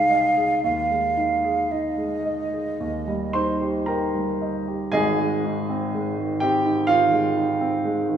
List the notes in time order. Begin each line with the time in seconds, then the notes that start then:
Already playing: C2 G#3 D#4 G#4 F5
0.10 D#5
0.37 G#4
0.64 D#2 F5
0.91 G#3
1.17 D#4
1.44 G#4
1.72 D#4 D#5
1.98 G#3
2.25 D#5
2.53 G#4
2.80 D#2
3.08 G3
3.33 D#4 C5 C6
3.61 G4
3.86 D#4 A#4 G5 A#5
4.15 G3
4.41 D#5
4.68 G4
4.92 G#1 G#2 G#4 D#5 G#5
5.20 G#3
5.45 D#4
5.70 C4
5.94 G#3
6.18 D#3
6.40 C4 G4 G5
6.65 D#4
6.87 D#3 F4 F5
7.12 G#3
7.36 D#4
7.61 C4
7.85 G#3
8.09 D#3